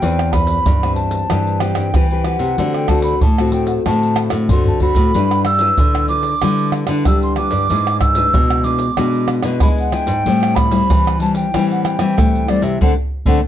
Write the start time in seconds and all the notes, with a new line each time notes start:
Already playing: G5
0.02 E2 E3 C4 G4 B4, pandeiro, maracas, surdo
0.19 pandeiro, tamborim, maracas
0.32 C4 G4 B4 B5, pandeiro, tamborim, surdo
0.47 pandeiro, maracas
0.66 G2 E3, pandeiro, maracas, surdo
0.83 C4 G4 B4, pandeiro, tamborim, maracas
0.95 A5, pandeiro, maracas
1.11 pandeiro, maracas
1.30 G2 E3 C4 G4 B4, pandeiro, tamborim, maracas, surdo
1.47 pandeiro, maracas
1.60 C4 G4 B4 G5, pandeiro, tamborim
1.75 G2, pandeiro, tamborim, maracas
1.94 E3 C4 G4 B4, pandeiro, tamborim, maracas, surdo
2.11 C4 G4 B4, pandeiro, maracas
2.24 C4 G4 B4 F#5, pandeiro, tamborim, maracas
2.39 C3, pandeiro, maracas
2.58 D3 A3 C4 F#4, pandeiro, maracas, surdo
2.74 G5, pandeiro, tamborim, maracas
2.88 A3 C4 F#4 A5, pandeiro, tamborim, maracas, surdo
3.02 B5, pandeiro, maracas
3.21 A2 A5, pandeiro, maracas, surdo
3.38 A3 C4 F#4, pandeiro, tamborim, maracas
3.52 G5, pandeiro, maracas
3.67 F#5, pandeiro, maracas
3.86 A2 D3 A3 C4 F#4 A5, pandeiro, tamborim, maracas, surdo
4.03 pandeiro, maracas
4.16 pandeiro, tamborim
4.30 A2, pandeiro, tamborim, maracas
4.49 A2 D3 A3 C4 F#4 C6, surdo, pandeiro, maracas
4.66 A5, surdo, pandeiro, maracas
4.80 A3 C4 F#4 B5, pandeiro, surdo
4.95 A2, pandeiro, maracas, surdo
5.14 G2 G3 D4 E4 B4, pandeiro, maracas, surdo
5.31 pandeiro, tamborim, maracas
5.45 E6, pandeiro, tamborim, maracas
5.59 D4 E4 B4, pandeiro, maracas
5.78 D3, pandeiro, maracas, surdo
5.95 pandeiro, tamborim, maracas
6.08 D4 E4 B4 D6, pandeiro, maracas
6.23 pandeiro, maracas
6.42 D3 G3 D4 E4 B4, pandeiro, tamborim, maracas, surdo
6.59 pandeiro, maracas
6.72 pandeiro, tamborim
6.87 D3 D4 E4 B4, pandeiro, tamborim, maracas
7.05 D3 G3 E6, pandeiro, tamborim, maracas, surdo
7.22 C6, pandeiro, maracas
7.36 D4 E4 B4 D6, pandeiro, tamborim, maracas
7.51 G2, pandeiro, maracas
7.70 G#2 G#3 D4 E4 B4, pandeiro, maracas, surdo
7.87 pandeiro, tamborim, maracas
8.00 E6, pandeiro, tamborim, maracas, surdo
8.15 D4 E4 B4, pandeiro, maracas
8.34 B2 G#3, pandeiro, maracas, surdo
8.50 pandeiro, tamborim, maracas
8.64 D4 E4 B4 D6, pandeiro, maracas
8.79 pandeiro, maracas
8.97 B2 G#3 D4 E4 B4, pandeiro, tamborim, maracas, surdo
9.14 pandeiro, maracas
9.28 pandeiro, tamborim
9.43 B2 D4 E4 B4, pandeiro, tamborim, maracas
9.60 G#3 B5, pandeiro, tamborim, maracas, surdo
9.78 F#5, pandeiro, maracas
9.92 D4 E4 B4 G5, pandeiro, tamborim, maracas
10.07 G#2, pandeiro, maracas
10.26 A2 G3 C4 E4, pandeiro, maracas, surdo
10.43 pandeiro, tamborim, maracas
10.55 B5, pandeiro, tamborim, maracas, surdo
10.71 G3 C4 E4, pandeiro, maracas
10.90 E3, pandeiro, maracas, surdo
11.07 pandeiro, tamborim, maracas
11.20 G3 C4 E4 A5, pandeiro, maracas
11.35 G5, pandeiro, maracas
11.54 A2 E3 G3 C4 E4, pandeiro, tamborim, maracas, surdo
11.71 F#5, pandeiro, maracas
11.85 G5, pandeiro, tamborim, maracas
11.99 E3 G3 C4 E4, pandeiro, tamborim, maracas
12.18 E3 A3, pandeiro, tamborim, maracas, surdo
12.35 pandeiro, maracas
12.48 G3 C4 E4 D5, pandeiro, tamborim, maracas
12.62 C3 E5, pandeiro, maracas
12.81 D3 A3 C4 D4 F#5, surdo
13.26 D3 A3 C4 D4 F#5, surdo